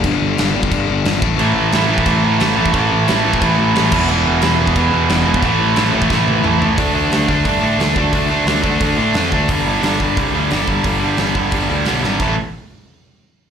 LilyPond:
<<
  \new Staff \with { instrumentName = "Distorted electric guitar" } { \clef bass \time 4/4 \key d \dorian \tempo 4 = 178 r1 | <a, e a>4 <a, e a>8 <a, e a>8 <a, e a>4 <a, e a>8 <a, e a>8 | <a, e a>4 <a, e a>8 <a, e a>8 <a, e a>4 <a, e a>8 <e, b, e>8 | <e, b, e>4 <e, b, e>8 <e, b, e>8 <e, b, e>4 <e, b, e>8 <e, b, e>8 |
<a, e a>4 <a, e a>8 <a, e a>8 <a, e a>4 <a, e a>8 <a, e a>8 | <d a d'>8 <d a d'>8 <d a d'>8 <d a d'>8 <d a d'>8 <d a d'>8 <d a d'>8 <d a d'>8 | <d a d'>8 <d a d'>8 <d a d'>8 <d a d'>8 <d a d'>8 <d a d'>8 <d a d'>8 <d a d'>8 | <g, d g>8 <g, d g>8 <g, d g>8 <g, d g>8 <g, d g>8 <g, d g>8 <g, d g>8 <g, d g>8 |
<g, d g>8 <g, d g>8 <g, d g>8 <g, d g>8 <g, d g>8 <g, d g>8 <g, d g>8 <g, d g>8 | <a, e a>8 r2. r8 | }
  \new Staff \with { instrumentName = "Overdriven electric guitar" } { \clef bass \time 4/4 \key d \dorian <g, d g>4 <g, d g>8 <g, d g>8 <g, d g>4 <g, d g>8 <a, e a>8 | <a, e a>4 <a, e a>8 <a, e a>8 <a, e a>4 <a, e a>8 <a, e a>8 | <a, e a>4 <a, e a>8 <a, e a>8 <a, e a>4 <a, e a>8 <e, b, e>8 | <e, b, e>4 <e, b, e>8 <e, b, e>8 <e, b, e>4 <e, b, e>8 <e, b, e>8 |
<a, e a>4 <a, e a>8 <a, e a>8 <a, e a>4 <a, e a>8 <a, e a>8 | <d a d'>8 <d a d'>8 <d a d'>8 <d a d'>8 <d a d'>8 <d a d'>8 <d a d'>8 <d a d'>8 | <d a d'>8 <d a d'>8 <d a d'>8 <d a d'>8 <d a d'>8 <d a d'>8 <d a d'>8 <d a d'>8 | <g, d g>8 <g, d g>8 <g, d g>8 <g, d g>8 <g, d g>8 <g, d g>8 <g, d g>8 <g, d g>8 |
<g, d g>8 <g, d g>8 <g, d g>8 <g, d g>8 <g, d g>8 <g, d g>8 <g, d g>8 <g, d g>8 | <a, e a>8 r2. r8 | }
  \new Staff \with { instrumentName = "Picked electric bass" } { \clef bass \time 4/4 \key d \dorian g,,8 g,,8 g,,8 g,,8 g,,8 g,,8 g,,8 a,,8 | a,,8 a,,8 a,,8 a,,8 a,,8 a,8 a,,8 a,,8 | a,,8 a,,8 a,,8 a,,8 a,,8 a,,8 a,,8 e,,8 | e,,8 e,,8 e,,8 e,,8 e,,8 e,8 e,,8 e,,8 |
a,,8 a,,8 a,,8 a,,8 a,,8 a,,8 a,,4 | d,4 d,8 d,8 g,8 a,8 d,8 d,8 | d,4 d,8 d,8 d,8 a,8 f,8 d,8 | g,,4 g,,8 g,,8 c,8 d,8 g,,8 g,,8 |
g,,4 g,,8 g,,8 g,,8 d,8 b,,8 gis,,8 | a,,8 r2. r8 | }
  \new DrumStaff \with { instrumentName = "Drums" } \drummode { \time 4/4 <cymc bd>4 <cymc sn>8. bd16 <cymc bd>4 <cymc sn>8 bd8 | cymc4 <cymc sn>8. bd16 <cymc bd>4 <cymc sn>8. bd16 | <cymc bd>4 <cymc sn>8. bd16 <cymc bd>4 <cymc sn>8 <cymc bd>8 | cymc4 <cymc sn>8. bd16 <cymc bd>4 <cymc sn>8. bd16 |
<cymc bd>4 <cymc sn>8. bd16 <bd sn>8 tommh8 toml8 tomfh8 | <hho bd>4 <hho sn>8 bd8 <hho bd>4 <hho sn>8 bd8 | <hho bd>4 <hho sn>8 bd8 <hho bd>4 <hho sn>8 bd8 | <hho bd>4 <hho sn>8 bd8 <hho bd>4 <hho sn>8 bd8 |
<hho bd>4 <hho sn>8 bd8 <hho bd>4 <hho sn>8 sn8 | <cymc bd>4 r4 r4 r4 | }
>>